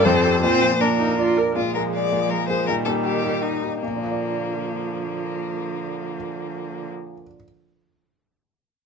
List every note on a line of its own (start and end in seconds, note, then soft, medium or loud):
0.04 0.42 F2 medium
0.04 0.42 C4 medium
0.04 0.42 A4 medium
0.04 0.41 C5 medium
0.24 0.41 G4 soft
0.24 0.41 A4 medium
0.42 1.53 A#2 medium
0.42 0.79 C4 medium
0.42 0.76 F4 medium
0.42 0.82 C5 loud
0.63 0.92 F3 medium
0.79 1.35 A#3 medium
0.79 0.88 D4 medium
0.79 1.11 D4 medium
0.79 1.37 A#4 medium
0.99 1.17 D#4 medium
0.99 1.30 A#4 medium
1.18 1.39 F4 medium
1.18 1.49 D5 medium
1.37 1.56 A#4 medium
1.37 1.56 A#4 soft
1.56 1.74 A#2 soft
1.56 2.71 F3 soft
1.56 2.69 G#3 soft
1.56 1.73 F4 medium
1.74 2.09 A#3 soft
1.74 2.09 F4 soft
1.74 2.09 G#4 soft
1.74 1.82 A#4 medium
1.94 2.31 D5 medium
2.12 2.46 A#3 soft
2.12 2.46 F4 soft
2.12 2.46 G#4 soft
2.29 2.47 A#4 medium
2.48 2.66 A#3 soft
2.48 2.66 F4 soft
2.48 2.66 G#4 soft
2.48 2.67 C5 medium
2.67 2.86 A#2 soft
2.67 3.63 D#3 medium
2.67 3.63 G3 soft
2.67 2.75 A#4 medium
2.85 3.20 A#3 soft
2.85 3.20 D#4 soft
2.85 3.21 G4 soft
2.85 2.93 A4 medium
3.04 3.43 G4 medium
3.24 3.59 A#3 soft
3.24 3.59 D#4 soft
3.24 3.59 G4 soft
3.42 3.81 D#4 medium
3.63 3.80 A#3 soft
3.63 3.80 D#4 soft
3.63 3.81 G4 soft
3.81 7.14 A#2 soft
3.81 6.91 D3 soft
3.81 6.90 F3 soft
3.81 6.90 A#3 soft
3.90 7.21 A#3 soft
3.96 7.27 D4 soft
4.04 7.35 F4 soft
4.11 7.42 D5 soft